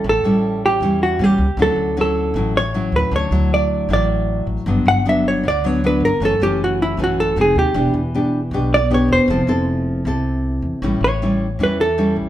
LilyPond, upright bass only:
\new Staff \with { instrumentName = "Upright bass" } { \clef bass \time 4/4 \key d \major \tempo 4 = 156 a,,8 a,,4. e,4 a,,8 cis,16 r16 | d,8 d,4. a,,4. d,16 r16 | d,8 d,4. a,,4. a,,16 r16 | g,,8 g,,4. d,4. g,,16 r16 |
fis,,8 fis,,4. a,,4 f,,8 ees,16 r16 | e,,8 e,,4. b,,4. e,,16 r16 | f,,8 f,,4. c,4. e,16 r16 | a,,8 a,,4. e,4. a,,16 r16 | }